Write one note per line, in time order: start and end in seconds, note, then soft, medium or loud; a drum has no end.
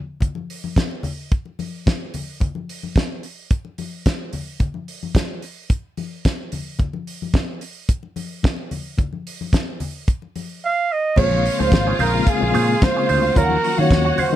0.21 kick medium
0.21 closed hi-hat medium
0.21 muted conga soft
0.21 low conga medium
0.35 high conga medium
0.50 open hi-hat medium
0.64 high conga medium
0.76 kick loud
0.76 snare loud
0.76 closed hi-hat medium
0.76 high conga medium
0.91 muted conga soft
1.03 open hi-hat medium
1.03 low conga medium
1.32 kick loud
1.32 closed hi-hat medium
1.45 muted conga soft
1.59 open hi-hat medium
1.59 high conga medium
1.86 kick loud
1.86 snare loud
1.86 closed hi-hat medium
1.86 muted conga soft
1.86 high conga medium
2.00 muted conga soft
2.14 open hi-hat medium
2.14 high conga soft
2.14 low conga medium
2.40 kick medium
2.40 closed hi-hat medium
2.40 low conga medium
2.55 muted conga soft
2.55 high conga medium
2.69 open hi-hat medium
2.83 high conga medium
2.96 kick loud
2.96 snare loud
2.96 closed hi-hat medium
2.96 muted conga soft
2.96 high conga medium
3.23 open hi-hat medium
3.51 kick loud
3.51 closed hi-hat medium
3.65 muted conga soft
3.78 open hi-hat medium
3.78 high conga medium
4.06 kick loud
4.06 snare loud
4.06 closed hi-hat medium
4.06 muted conga soft
4.06 high conga medium
4.33 open hi-hat medium
4.33 high conga soft
4.33 low conga medium
4.60 kick loud
4.60 closed hi-hat medium
4.60 muted conga soft
4.60 low conga medium
4.74 high conga medium
4.88 open hi-hat medium
5.03 high conga medium
5.15 kick loud
5.15 snare loud
5.15 closed hi-hat medium
5.15 muted conga soft
5.15 high conga medium
5.42 open hi-hat medium
5.69 kick loud
5.69 closed hi-hat medium
5.69 muted conga soft
5.97 open hi-hat medium
5.97 high conga medium
6.25 kick loud
6.25 snare loud
6.25 closed hi-hat medium
6.25 high conga medium
6.52 open hi-hat medium
6.52 high conga soft
6.52 low conga medium
6.79 kick medium
6.79 closed hi-hat medium
6.79 muted conga soft
6.79 low conga medium
6.93 high conga medium
7.07 open hi-hat medium
7.22 high conga medium
7.34 kick loud
7.34 snare loud
7.34 closed hi-hat medium
7.34 muted conga soft
7.34 high conga medium
7.61 open hi-hat medium
7.89 kick loud
7.89 closed hi-hat medium
7.89 muted conga soft
8.03 muted conga soft
8.16 open hi-hat medium
8.16 high conga medium
8.43 kick loud
8.43 snare loud
8.43 closed hi-hat medium
8.43 muted conga soft
8.43 high conga medium
8.57 muted conga soft
8.71 open hi-hat medium
8.71 high conga soft
8.71 low conga medium
8.98 kick loud
8.98 closed hi-hat medium
8.98 muted conga soft
8.98 low conga medium
9.13 high conga medium
9.27 open hi-hat medium
9.41 high conga medium
9.53 kick loud
9.53 snare loud
9.53 closed hi-hat medium
9.53 high conga medium
9.80 open hi-hat medium
9.80 low conga medium
10.08 kick loud
10.08 closed hi-hat medium
10.22 muted conga soft
10.36 open hi-hat medium
10.36 high conga medium
10.65 10.94 F5 loud
10.93 11.18 D#5 loud
11.16 11.48 A#1 loud
11.16 11.43 C#3 medium
11.16 11.43 G#3 medium
11.16 11.43 A#3 medium
11.16 11.44 C4 medium
11.16 11.43 C#4 medium
11.16 13.32 F4 medium
11.16 11.44 F4 medium
11.16 11.43 G#4 loud
11.16 11.43 C5 medium
11.16 11.62 C#5 loud
11.16 13.32 F5 medium
11.16 kick loud
11.16 crash loud
11.16 low conga medium
11.31 muted conga soft
11.31 high conga medium
11.45 muted clean electric guitar stroke soft
11.45 open hi-hat medium
11.59 11.69 C#2 medium
11.59 11.93 C#3 medium
11.59 11.93 G#3 medium
11.59 11.93 A#3 medium
11.59 11.93 C4 medium
11.59 11.70 C#4 medium
11.59 11.94 D#4 medium
11.59 11.70 G#4 medium
11.59 11.69 C5 medium
11.59 12.00 C5 medium
11.59 high conga medium
11.71 11.92 G#1 loud
11.71 kick loud
11.71 snare loud
11.71 closed hi-hat medium
11.71 high conga medium
11.87 11.97 C#4 soft
11.87 11.97 G#4 medium
11.87 11.97 C#5 medium
11.99 12.20 A#1 medium
11.99 12.14 C#4 medium
11.99 12.14 G#4 loud
11.99 12.31 A#4 medium
11.99 12.13 C5 loud
11.99 open hi-hat medium
11.99 low conga medium
12.13 12.30 C#3 medium
12.13 12.30 G#3 medium
12.13 12.30 A#3 medium
12.13 12.30 C4 medium
12.13 12.31 F4 medium
12.13 muted clean electric guitar stroke soft
12.27 12.86 G#4 loud
12.27 kick loud
12.27 closed hi-hat medium
12.40 12.51 A#1 loud
12.40 12.75 C#3 medium
12.40 12.75 G#3 medium
12.40 12.75 A#3 medium
12.40 12.75 C4 medium
12.40 12.76 F4 medium
12.40 muted clean electric guitar stroke soft
12.40 muted conga soft
12.54 12.75 A#2 loud
12.54 12.68 C#4 medium
12.54 12.69 G#4 medium
12.54 12.68 C5 medium
12.54 open hi-hat medium
12.54 high conga medium
12.69 muted clean electric guitar stroke soft
12.81 13.39 C5 loud
12.81 muted clean electric guitar stroke soft
12.81 kick loud
12.81 snare loud
12.81 closed hi-hat medium
12.81 muted conga soft
12.81 high conga medium
12.95 13.21 C#3 medium
12.95 13.21 G#3 medium
12.95 13.21 A#3 medium
12.95 13.22 C4 medium
12.95 13.07 C#4 medium
12.95 13.22 F4 medium
12.95 13.06 G#4 medium
12.95 13.06 C5 medium
13.09 13.29 D2 medium
13.09 13.23 C#4 medium
13.09 13.23 G#4 medium
13.09 13.22 C5 loud
13.09 open hi-hat medium
13.09 low conga medium
13.23 muted clean electric guitar stroke soft
13.35 13.56 D#2 loud
13.35 13.62 D#3 medium
13.35 13.62 F#3 medium
13.35 13.62 A#3 medium
13.35 13.62 C#4 medium
13.35 13.62 F4 medium
13.35 14.36 F#4 medium
13.35 13.62 F#4 medium
13.35 13.79 A#4 loud
13.35 13.62 C#5 medium
13.35 13.63 F5 medium
13.35 14.36 F#5 medium
13.35 kick loud
13.35 closed hi-hat medium
13.35 low conga medium
13.50 muted conga soft
13.50 high conga medium
13.64 muted clean electric guitar stroke soft
13.64 open hi-hat medium
13.77 14.12 D#3 medium
13.77 13.88 D#3 loud
13.77 14.12 F#3 medium
13.77 14.12 A#3 medium
13.77 14.12 C#4 medium
13.77 14.12 F#4 medium
13.77 13.89 F#4 soft
13.77 13.89 C#5 medium
13.77 14.21 C#5 medium
13.77 13.88 F5 medium
13.77 high conga medium
13.91 14.11 D#2 loud
13.91 kick loud
13.91 snare loud
13.91 closed hi-hat medium
13.91 muted conga soft
13.91 high conga medium
14.05 14.16 F#4 medium
14.05 14.16 C#5 medium
14.05 14.15 F#5 medium
14.05 muted conga soft
14.18 14.32 F#4 medium
14.18 14.36 C5 medium
14.18 14.32 C#5 medium
14.18 14.31 F5 loud
14.18 open hi-hat medium
14.18 low conga medium
14.32 14.36 D#3 medium
14.32 14.36 F#3 medium
14.32 14.36 A#3 medium
14.32 muted clean electric guitar stroke medium